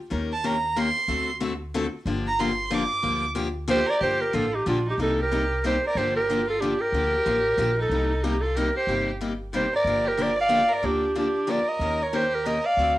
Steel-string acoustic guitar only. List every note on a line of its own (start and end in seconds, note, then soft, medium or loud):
0.10 0.31 D#3 medium
0.10 0.32 A#3 medium
0.10 0.32 C#4 medium
0.10 0.32 G4 medium
0.10 0.32 A#4 medium
0.44 0.55 D#3 medium
0.44 0.55 A#3 medium
0.44 0.55 C#4 medium
0.44 0.55 G4 medium
0.44 0.55 A#4 medium
0.76 0.87 D#3 medium
0.76 0.87 A#3 medium
0.76 0.88 C#4 medium
0.76 0.88 G4 medium
0.76 0.88 A#4 loud
1.08 1.29 D3 medium
1.08 1.29 A3 medium
1.08 1.29 C4 medium
1.08 1.30 F#4 medium
1.08 1.30 A4 medium
1.40 1.52 D3 medium
1.40 1.52 A3 loud
1.40 1.52 C4 medium
1.40 1.52 F#4 loud
1.40 1.53 A4 medium
1.74 1.85 D3 loud
1.74 1.85 A3 loud
1.74 1.85 C4 loud
1.74 1.86 F#4 loud
1.74 1.86 A4 loud
2.06 2.27 D3 medium
2.06 2.27 F3 medium
2.06 2.27 A#3 medium
2.06 2.27 D4 medium
2.06 2.27 G4 medium
2.39 2.50 D3 medium
2.39 2.50 F3 loud
2.39 2.51 A#3 loud
2.39 2.50 D4 loud
2.39 2.51 G4 loud
2.70 2.82 D3 medium
2.70 2.82 F3 loud
2.70 2.82 A#3 loud
2.70 2.83 D4 loud
2.70 2.83 G4 loud
3.02 3.24 D3 medium
3.02 3.24 F3 medium
3.02 3.24 A#3 medium
3.02 3.24 D4 medium
3.02 3.25 G4 medium
3.35 3.47 D3 medium
3.35 3.47 F3 medium
3.35 3.47 A#3 medium
3.35 3.47 D4 loud
3.35 3.47 G4 loud
3.67 3.79 D3 loud
3.67 3.79 F3 loud
3.67 3.80 A#3 loud
3.67 3.79 D4 loud
3.67 3.80 G4 loud
4.02 4.22 D3 medium
4.02 4.22 F3 medium
4.02 4.22 A#3 medium
4.02 4.23 D4 medium
4.02 4.23 G4 medium
4.33 4.45 D3 medium
4.33 4.45 F3 medium
4.33 4.45 A#3 medium
4.33 4.45 D4 medium
4.33 4.45 G4 medium
4.66 4.77 D3 medium
4.66 4.77 F3 medium
4.66 4.78 A#3 medium
4.66 4.78 D4 medium
4.66 4.78 G4 medium
4.99 5.19 C3 medium
4.99 5.20 G3 medium
4.99 5.20 A#3 medium
4.99 5.20 D#4 medium
4.99 5.20 G4 medium
5.31 5.42 C3 medium
5.31 5.42 G3 medium
5.31 5.43 A#3 medium
5.31 5.43 D#4 medium
5.31 5.43 G4 medium
5.64 5.75 C3 medium
5.64 5.75 G3 medium
5.64 5.75 A#3 medium
5.64 5.76 D#4 medium
5.64 5.75 G4 medium
5.97 6.17 D3 medium
5.97 6.17 F3 medium
5.97 6.18 A#3 medium
5.97 6.18 D4 medium
5.97 6.18 G4 medium
6.30 6.40 D3 medium
6.30 6.40 F3 medium
6.30 6.40 A#3 medium
6.30 6.41 D4 medium
6.30 6.41 G4 medium
6.62 6.73 D3 medium
6.62 6.73 F3 medium
6.62 6.73 A#3 medium
6.62 6.73 D4 medium
6.62 6.73 G4 medium
6.94 7.15 D3 medium
6.94 7.15 F3 medium
6.94 7.15 A#3 medium
6.94 7.15 D4 medium
6.94 7.15 G4 medium
7.26 7.37 D3 medium
7.26 7.37 F3 medium
7.26 7.38 A#3 medium
7.26 7.37 D4 medium
7.26 7.37 G4 medium
7.58 7.69 D3 medium
7.58 7.69 F3 medium
7.58 7.70 A#3 medium
7.58 7.70 D4 medium
7.58 7.70 G4 loud
7.91 8.12 C3 medium
7.91 8.12 G3 medium
7.91 8.12 A#3 medium
7.91 8.12 D#4 medium
7.91 8.12 G4 medium
8.24 8.35 C3 medium
8.24 8.35 G3 medium
8.24 8.35 A#3 medium
8.24 8.35 D#4 medium
8.24 8.35 G4 medium
8.57 8.68 C3 medium
8.57 8.67 G3 medium
8.57 8.67 A#3 loud
8.57 8.68 D#4 medium
8.57 8.68 G4 medium
8.88 9.09 C3 medium
8.88 9.09 G3 medium
8.88 9.09 A#3 medium
8.88 9.09 D#4 medium
8.88 9.09 G4 medium
9.21 9.32 C3 medium
9.21 9.32 G3 medium
9.21 9.32 A#3 medium
9.21 9.32 D#4 medium
9.21 9.32 G4 medium
9.53 9.64 C3 medium
9.53 9.65 G3 medium
9.53 9.65 A#3 medium
9.53 9.65 D#4 medium
9.53 9.65 G4 medium
9.87 10.07 D3 medium
9.87 10.07 F3 medium
9.87 10.07 A#3 medium
9.87 10.07 D4 medium
9.87 10.07 G4 medium
10.17 10.29 D3 medium
10.17 10.29 F3 medium
10.17 10.29 A#3 medium
10.17 10.29 D4 medium
10.17 10.29 G4 medium
10.48 10.61 D3 medium
10.48 10.61 F3 medium
10.48 10.61 A#3 loud
10.48 10.61 D4 loud
10.48 10.61 G4 loud
10.82 11.04 D3 medium
10.82 11.03 F3 medium
10.82 11.03 A#3 medium
10.82 11.04 D4 medium
10.82 11.04 G4 medium
11.15 11.27 D3 medium
11.15 11.27 F3 medium
11.15 11.27 A#3 medium
11.15 11.27 D4 medium
11.15 11.27 G4 medium
11.47 11.59 D3 medium
11.47 11.59 F3 medium
11.47 11.59 A#3 medium
11.47 11.59 D4 medium
11.47 11.59 G4 loud
11.81 12.01 D#3 medium
11.81 12.01 A#3 medium
11.81 12.01 C#4 medium
11.81 12.02 G4 medium
11.81 12.01 A#4 medium
12.13 12.24 D#3 medium
12.13 12.24 A#3 medium
12.13 12.24 C#4 medium
12.13 12.24 G4 medium
12.13 12.24 A#4 medium
12.46 12.56 D#3 medium
12.46 12.57 A#3 medium
12.46 12.57 C#4 medium
12.46 12.57 G4 loud
12.46 12.57 A#4 medium
12.78 12.98 D3 medium
12.78 12.98 A3 medium
12.78 12.98 C4 medium
12.78 12.98 F#4 medium
12.78 12.98 A4 medium